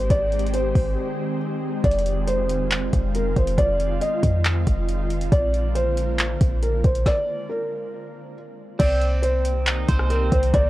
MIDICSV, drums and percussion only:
0, 0, Header, 1, 2, 480
1, 0, Start_track
1, 0, Key_signature, -3, "minor"
1, 0, Tempo, 434783
1, 113, Time_signature, 4, 2, 24, 8
1, 11811, End_track
2, 0, Start_track
2, 0, Title_t, "Drums"
2, 113, Note_on_c, 9, 36, 112
2, 113, Note_on_c, 9, 42, 76
2, 223, Note_off_c, 9, 36, 0
2, 223, Note_off_c, 9, 42, 0
2, 354, Note_on_c, 9, 42, 39
2, 433, Note_off_c, 9, 42, 0
2, 433, Note_on_c, 9, 42, 52
2, 513, Note_off_c, 9, 42, 0
2, 513, Note_on_c, 9, 42, 63
2, 592, Note_off_c, 9, 42, 0
2, 592, Note_on_c, 9, 42, 86
2, 702, Note_off_c, 9, 42, 0
2, 832, Note_on_c, 9, 36, 94
2, 833, Note_on_c, 9, 46, 64
2, 943, Note_off_c, 9, 36, 0
2, 944, Note_off_c, 9, 46, 0
2, 2033, Note_on_c, 9, 36, 116
2, 2033, Note_on_c, 9, 42, 61
2, 2113, Note_off_c, 9, 42, 0
2, 2113, Note_on_c, 9, 42, 59
2, 2144, Note_off_c, 9, 36, 0
2, 2193, Note_off_c, 9, 42, 0
2, 2193, Note_on_c, 9, 42, 60
2, 2274, Note_off_c, 9, 42, 0
2, 2274, Note_on_c, 9, 42, 58
2, 2384, Note_off_c, 9, 42, 0
2, 2512, Note_on_c, 9, 42, 85
2, 2623, Note_off_c, 9, 42, 0
2, 2753, Note_on_c, 9, 42, 86
2, 2864, Note_off_c, 9, 42, 0
2, 2990, Note_on_c, 9, 42, 79
2, 2996, Note_on_c, 9, 39, 117
2, 3100, Note_off_c, 9, 42, 0
2, 3106, Note_off_c, 9, 39, 0
2, 3234, Note_on_c, 9, 42, 78
2, 3235, Note_on_c, 9, 36, 93
2, 3344, Note_off_c, 9, 42, 0
2, 3346, Note_off_c, 9, 36, 0
2, 3474, Note_on_c, 9, 42, 77
2, 3584, Note_off_c, 9, 42, 0
2, 3713, Note_on_c, 9, 42, 56
2, 3714, Note_on_c, 9, 36, 99
2, 3823, Note_off_c, 9, 42, 0
2, 3824, Note_off_c, 9, 36, 0
2, 3833, Note_on_c, 9, 42, 60
2, 3943, Note_off_c, 9, 42, 0
2, 3953, Note_on_c, 9, 36, 114
2, 3953, Note_on_c, 9, 42, 78
2, 4063, Note_off_c, 9, 36, 0
2, 4063, Note_off_c, 9, 42, 0
2, 4193, Note_on_c, 9, 42, 64
2, 4304, Note_off_c, 9, 42, 0
2, 4432, Note_on_c, 9, 42, 84
2, 4542, Note_off_c, 9, 42, 0
2, 4672, Note_on_c, 9, 36, 92
2, 4673, Note_on_c, 9, 42, 83
2, 4782, Note_off_c, 9, 36, 0
2, 4783, Note_off_c, 9, 42, 0
2, 4910, Note_on_c, 9, 42, 82
2, 4915, Note_on_c, 9, 39, 112
2, 5020, Note_off_c, 9, 42, 0
2, 5026, Note_off_c, 9, 39, 0
2, 5154, Note_on_c, 9, 42, 78
2, 5155, Note_on_c, 9, 36, 99
2, 5264, Note_off_c, 9, 42, 0
2, 5265, Note_off_c, 9, 36, 0
2, 5393, Note_on_c, 9, 42, 73
2, 5504, Note_off_c, 9, 42, 0
2, 5633, Note_on_c, 9, 42, 55
2, 5743, Note_off_c, 9, 42, 0
2, 5753, Note_on_c, 9, 42, 60
2, 5864, Note_off_c, 9, 42, 0
2, 5873, Note_on_c, 9, 36, 115
2, 5873, Note_on_c, 9, 42, 73
2, 5983, Note_off_c, 9, 36, 0
2, 5984, Note_off_c, 9, 42, 0
2, 6114, Note_on_c, 9, 42, 61
2, 6224, Note_off_c, 9, 42, 0
2, 6352, Note_on_c, 9, 42, 84
2, 6463, Note_off_c, 9, 42, 0
2, 6593, Note_on_c, 9, 42, 86
2, 6704, Note_off_c, 9, 42, 0
2, 6830, Note_on_c, 9, 42, 80
2, 6835, Note_on_c, 9, 39, 116
2, 6940, Note_off_c, 9, 42, 0
2, 6945, Note_off_c, 9, 39, 0
2, 7074, Note_on_c, 9, 42, 84
2, 7075, Note_on_c, 9, 36, 92
2, 7184, Note_off_c, 9, 42, 0
2, 7185, Note_off_c, 9, 36, 0
2, 7313, Note_on_c, 9, 42, 74
2, 7424, Note_off_c, 9, 42, 0
2, 7552, Note_on_c, 9, 42, 59
2, 7553, Note_on_c, 9, 36, 96
2, 7663, Note_off_c, 9, 42, 0
2, 7664, Note_off_c, 9, 36, 0
2, 7672, Note_on_c, 9, 42, 59
2, 7783, Note_off_c, 9, 42, 0
2, 7793, Note_on_c, 9, 36, 106
2, 7796, Note_on_c, 9, 38, 90
2, 7903, Note_off_c, 9, 36, 0
2, 7906, Note_off_c, 9, 38, 0
2, 9713, Note_on_c, 9, 36, 117
2, 9713, Note_on_c, 9, 42, 79
2, 9713, Note_on_c, 9, 49, 101
2, 9823, Note_off_c, 9, 36, 0
2, 9823, Note_off_c, 9, 42, 0
2, 9823, Note_off_c, 9, 49, 0
2, 9954, Note_on_c, 9, 42, 63
2, 10064, Note_off_c, 9, 42, 0
2, 10192, Note_on_c, 9, 42, 86
2, 10303, Note_off_c, 9, 42, 0
2, 10434, Note_on_c, 9, 42, 89
2, 10544, Note_off_c, 9, 42, 0
2, 10670, Note_on_c, 9, 42, 87
2, 10676, Note_on_c, 9, 39, 123
2, 10780, Note_off_c, 9, 42, 0
2, 10786, Note_off_c, 9, 39, 0
2, 10914, Note_on_c, 9, 42, 80
2, 10915, Note_on_c, 9, 36, 97
2, 11024, Note_off_c, 9, 42, 0
2, 11026, Note_off_c, 9, 36, 0
2, 11033, Note_on_c, 9, 37, 84
2, 11143, Note_off_c, 9, 37, 0
2, 11153, Note_on_c, 9, 42, 77
2, 11264, Note_off_c, 9, 42, 0
2, 11393, Note_on_c, 9, 42, 61
2, 11394, Note_on_c, 9, 36, 95
2, 11503, Note_off_c, 9, 42, 0
2, 11504, Note_off_c, 9, 36, 0
2, 11513, Note_on_c, 9, 42, 63
2, 11623, Note_off_c, 9, 42, 0
2, 11633, Note_on_c, 9, 36, 116
2, 11633, Note_on_c, 9, 42, 81
2, 11743, Note_off_c, 9, 36, 0
2, 11743, Note_off_c, 9, 42, 0
2, 11811, End_track
0, 0, End_of_file